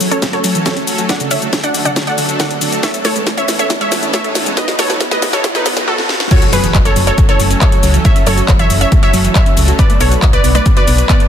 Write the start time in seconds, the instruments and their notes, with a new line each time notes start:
Already playing: riser
0.01 synth arpeggio sound F#3, analog synth pad F#3 A3 C#4 A4, open hi-hat, shaker
0.11 synth arpeggio sound C#4, synth pluck A4 C#5, closed hi-hat, shaker
0.22 synth arpeggio sound F#3, analog synth pad F#3 A3 C#4 A4, kick, snare, closed hi-hat, shaker
0.33 analog synth pad F#3 A3 C#4 A4, synth arpeggio sound F#4, synth pluck A4 C#5, closed hi-hat
0.44 synth arpeggio sound F#3, open hi-hat, shaker
0.55 synth arpeggio sound E3, analog synth pad F#3 A3 C#4 A4, closed hi-hat, shaker
0.66 synth arpeggio sound F#3, synth pluck A4 C#5, kick, snare, closed hi-hat, shaker
0.77 analog synth pad F#3 A3 C#4 A4, synth arpeggio sound C#4, closed hi-hat
0.87 synth arpeggio sound F#3, analog synth pad F#3 A3 C#4 A4, open hi-hat, shaker
0.98 synth arpeggio sound F#4, closed hi-hat, shaker
1.09 synth arpeggio sound D3, analog synth pad F#3 A3 D4 A4, synth pluck D5 F#5, kick, snare, closed hi-hat, shaker
1.20 synth arpeggio sound C#3, closed hi-hat, shaker
1.31 synth arpeggio sound D3, analog synth pad F#3 A3 D4 A4, synth pluck C#5 E5, open hi-hat, shaker
1.42 synth arpeggio sound A3, closed hi-hat, shaker
1.53 synth arpeggio sound D3, kick, snare, closed hi-hat, shaker
1.64 synth arpeggio sound D4, synth pluck D5 F#5, closed hi-hat, shaker
1.74 synth arpeggio sound D3, analog synth pad F#3 A3 D4 A4, open hi-hat, shaker
1.85 synth arpeggio sound C#3, synth pluck D5 F#5, closed hi-hat, shaker
1.96 synth arpeggio sound D3, analog synth pad F#3 A3 D4 A4, kick, snare, closed hi-hat, shaker
2.07 analog synth pad F#3 A3 D4 A4, synth arpeggio sound A3, synth pluck D5 F#5, closed hi-hat
2.18 synth arpeggio sound D3, open hi-hat, shaker
2.29 analog synth pad F#3 A3 D4 A4, synth arpeggio sound D4, closed hi-hat, shaker
2.40 synth arpeggio sound D3, synth pluck D5 F#5, kick, snare, closed hi-hat, shaker
2.50 synth arpeggio sound C#3, analog synth pad F#3 A3 D4 A4, closed hi-hat
2.61 synth arpeggio sound D3, analog synth pad F#3 A3 D4 A4, open hi-hat, shaker
2.72 synth arpeggio sound A3, closed hi-hat, shaker
2.83 analog synth pad E3 B3 C#4 A4, synth arpeggio sound A3, synth pluck C#5 E5, kick, snare, closed hi-hat, shaker
2.94 synth arpeggio sound A4, closed hi-hat, shaker
3.05 analog synth pad E3 B3 C#4 A4, synth arpeggio sound A3, synth pluck A4 C#5, snare, open hi-hat, shaker
3.16 synth arpeggio sound G#3, closed hi-hat, shaker
3.27 synth arpeggio sound A3, kick, snare, closed hi-hat, shaker
3.37 synth arpeggio sound E4, synth pluck C#5 E5, closed hi-hat, shaker
3.48 analog synth pad E3 B3 C#4 A4, synth arpeggio sound A3, snare, open hi-hat, shaker
3.59 synth arpeggio sound A4, synth pluck C#5 E5, closed hi-hat, shaker
3.70 analog synth pad E3 B3 C#4 A4, synth arpeggio sound A3, kick, snare, closed hi-hat, shaker
3.81 analog synth pad E3 B3 C#4 A4, synth arpeggio sound G#3, synth pluck C#5 E5, closed hi-hat
3.92 synth arpeggio sound A3, snare, open hi-hat, shaker
4.03 analog synth pad E3 B3 C#4 A4, synth arpeggio sound E4, closed hi-hat, shaker
4.14 synth arpeggio sound A3, synth pluck C#5 E5, kick, snare, closed hi-hat, shaker
4.24 analog synth pad E3 B3 C#4 A4, synth arpeggio sound A4, closed hi-hat
4.35 analog synth pad E3 B3 C#4 A4, synth arpeggio sound A3, snare, open hi-hat, shaker
4.46 synth arpeggio sound G#3, closed hi-hat, shaker
4.57 analog synth pad F#3 B3 D#4 B4, synth arpeggio sound B3, synth pluck B4 D#5, kick, snare, closed hi-hat, shaker
4.68 synth arpeggio sound F#4, snare, closed hi-hat, shaker
4.79 analog synth pad F#3 B3 D#4 B4, synth arpeggio sound B3, synth pluck A4 C#5, snare, open hi-hat, shaker
4.90 synth arpeggio sound B4, snare, closed hi-hat, shaker
5.01 synth arpeggio sound B3, kick, snare, closed hi-hat, shaker
5.11 synth arpeggio sound A3, synth pluck B4 D#5, snare, closed hi-hat, shaker
5.22 analog synth pad F#3 B3 D#4 B4, synth arpeggio sound B3, snare, open hi-hat, shaker
5.33 synth arpeggio sound F#4, synth pluck A4 C#5, snare, closed hi-hat, shaker
5.44 analog synth pad F#3 B3 D#4 B4, synth arpeggio sound B3, kick, snare, closed hi-hat, shaker
5.55 analog synth pad F#3 B3 D#4 B4, synth pluck D#4 B4, synth arpeggio sound B4, snare, closed hi-hat, shaker
5.66 synth arpeggio sound B3, snare, open hi-hat, shaker
5.77 analog synth pad F#3 B3 D#4 B4, synth arpeggio sound B3, snare, closed hi-hat, shaker
5.88 synth pluck F#4 A4
5.98 snare
6.09 snare
6.20 snare
6.31 synth arpeggio sound F#3, analog synth pad F#3 A3 C#4 A4, synth pluck A4 C#5, grand piano C#5, kick, closed hi-hat, crash, impact, shaker
6.42 synth arpeggio sound F#4, closed hi-hat, shaker
6.53 fm bass F#1, analog synth pad F#3 A3 C#4 A4, synth arpeggio sound F#3, synth pluck G#4 B4, grand piano B4, open hi-hat, shaker
6.64 synth arpeggio sound E3, closed hi-hat, shaker
6.74 fm bass F#1, synth arpeggio sound F#3, kick, clap, closed hi-hat, shaker
6.85 synth arpeggio sound C#4, synth pluck A4 C#5, grand piano C#5, closed hi-hat, shaker
6.96 fm bass F#1, synth arpeggio sound F#3, analog synth pad F#3 A3 C#4 A4, open hi-hat, shaker
7.07 synth arpeggio sound F#4, synth pluck A4 C#5, grand piano C#5, closed hi-hat, shaker
7.18 synth arpeggio sound F#3, analog synth pad F#3 A3 C#4 A4, kick, closed hi-hat, shaker
7.29 synth arpeggio sound E3, analog synth pad F#3 A3 C#4 A4, synth pluck A4 C#5, grand piano C#5, closed hi-hat
7.40 fm bass F#1, synth arpeggio sound F#3, open hi-hat, shaker
7.51 analog synth pad F#3 A3 C#4 A4, synth arpeggio sound C#4, closed hi-hat, shaker
7.61 synth arpeggio sound F#3, synth pluck A4 C#5, grand piano C#5, kick, clap, closed hi-hat, shaker
7.72 analog synth pad F#3 A3 C#4 A4, synth arpeggio sound F#4, closed hi-hat
7.83 fm bass C#2, synth arpeggio sound F#3, analog synth pad F#3 A3 C#4 A4, open hi-hat, shaker
7.94 synth arpeggio sound E3, closed hi-hat, shaker
8.05 synth arpeggio sound F#3, analog synth pad F#3 A3 C#4 A4, synth pluck C#5 E5, grand piano E5, kick, closed hi-hat, shaker
8.16 synth arpeggio sound C#4, closed hi-hat, shaker
8.26 fm bass F#1, synth arpeggio sound F#3, analog synth pad F#3 A3 C#4 A4, synth pluck A4 C#5, grand piano C#5, open hi-hat, shaker
8.37 synth arpeggio sound F#4, closed hi-hat, shaker
8.48 fm bass F#1, synth arpeggio sound F#3, kick, clap, closed hi-hat, shaker
8.59 synth arpeggio sound E3, synth pluck C#5 E5, grand piano E5, closed hi-hat, shaker
8.70 fm bass F#1, synth arpeggio sound F#3, analog synth pad F#3 A3 C#4 A4, open hi-hat, shaker
8.81 synth arpeggio sound C#4, synth pluck C#5 E5, grand piano E5, closed hi-hat, shaker
8.92 synth arpeggio sound F#3, analog synth pad F#3 A3 C#4 A4, kick, closed hi-hat, shaker
9.03 analog synth pad F#3 A3 C#4 A4, synth arpeggio sound F#4, synth pluck C#5 E5, grand piano E5, closed hi-hat
9.14 fm bass F#1, synth arpeggio sound F#3, open hi-hat, shaker
9.24 synth arpeggio sound E3, analog synth pad F#3 A3 C#4 A4, closed hi-hat, shaker
9.35 synth arpeggio sound F#3, synth pluck C#5 E5, grand piano E5, kick, clap, closed hi-hat, shaker
9.46 analog synth pad F#3 A3 C#4 A4, synth arpeggio sound C#4, closed hi-hat
9.57 fm bass C#2, synth arpeggio sound F#3, analog synth pad F#3 A3 C#4 A4, open hi-hat, shaker
9.68 synth arpeggio sound F#4, closed hi-hat, shaker
9.79 analog synth pad F#3 B3 D4 B4, synth arpeggio sound B3, synth pluck B4 D5, grand piano D5, kick, closed hi-hat, shaker
9.90 synth arpeggio sound A3, closed hi-hat, shaker
10.01 fm bass B1, analog synth pad F#3 B3 D4 B4, synth arpeggio sound B3, synth pluck A4 C#5, grand piano C#5, open hi-hat, shaker
10.11 synth arpeggio sound F#4, closed hi-hat, shaker
10.22 fm bass B1, synth arpeggio sound B3, kick, clap, closed hi-hat, shaker
10.33 synth pluck B4 D5, synth arpeggio sound B4, grand piano D5, closed hi-hat, shaker
10.44 fm bass B1, analog synth pad F#3 B3 D4 B4, synth arpeggio sound B3, open hi-hat, shaker
10.55 synth arpeggio sound A3, synth pluck B4 D5, grand piano D5, closed hi-hat, shaker
10.66 analog synth pad F#3 B3 D4 B4, synth arpeggio sound B3, kick, closed hi-hat, shaker
10.77 analog synth pad F#3 B3 D4 B4, synth arpeggio sound F#4, synth pluck B4 D5, grand piano D5, closed hi-hat
10.88 fm bass B1, synth arpeggio sound B3, open hi-hat, shaker
10.98 analog synth pad F#3 B3 D4 B4, synth arpeggio sound B4, closed hi-hat, shaker
11.09 synth arpeggio sound B3, synth pluck B4 D5, grand piano D5, kick, clap, closed hi-hat, shaker
11.20 analog synth pad F#3 B3 D4 B4, synth arpeggio sound A3, closed hi-hat